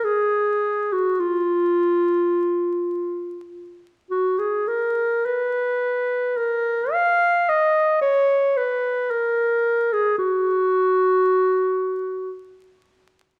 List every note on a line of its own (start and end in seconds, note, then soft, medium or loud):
0.05 0.94 G#4 medium
0.93 1.22 F#4 medium
1.20 3.51 F4 medium
4.10 4.40 F#4 medium
4.39 4.69 G#4 medium
4.68 5.27 A#4 medium
5.26 6.38 B4 medium
6.37 6.94 A#4 medium
6.93 7.51 F5 medium
7.49 8.01 D#5 medium
8.01 8.59 C#5 medium
8.57 9.12 B4 medium
9.11 9.94 A#4 medium
9.93 10.18 G#4 medium
10.18 12.31 F#4 medium